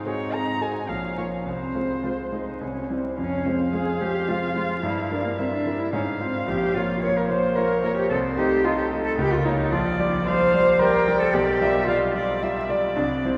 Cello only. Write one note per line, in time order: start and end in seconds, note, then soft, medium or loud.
0.00 0.88 D#4 medium
0.88 1.47 C#4 medium
1.45 1.98 C4 medium
2.03 2.11 F4 medium
2.32 2.62 D#4 medium
2.60 2.92 C#4 medium
2.90 3.17 C4 medium
3.18 3.47 C#4 medium
3.46 3.73 C4 medium
3.73 4.03 G#4 medium
4.01 4.30 G4 medium
4.28 4.54 F4 medium
4.55 4.82 F4 medium
4.82 5.13 E4 medium
5.11 5.24 D4 medium
5.25 5.30 A#3 medium
5.38 5.43 C4 medium
5.51 5.81 D4 medium
5.79 5.91 E4 medium
5.92 6.00 C#4 medium
6.20 6.49 C4 medium
6.47 6.76 G4 loud
6.74 7.00 F4 medium
7.01 7.18 C#5 loud
7.16 7.28 A#4 medium
7.28 7.57 C5 loud
7.56 7.82 A#4 loud
7.83 7.96 A#4 loud
7.97 8.09 G4 loud
8.10 8.18 A4 loud
8.37 8.66 G4 loud
8.65 8.77 F4 loud
8.78 8.86 G4 loud
9.05 9.17 A4 loud
9.18 9.34 G4 loud
9.32 9.47 F4 loud
9.45 9.74 D#4 loud
9.72 10.25 F4 loud
10.26 10.81 C5 loud
10.79 11.22 A#4 loud
11.20 11.34 A4 loud
11.33 11.88 G4 loud
11.86 12.41 F4 loud
12.96 13.04 D4 loud
13.25 13.38 C4 medium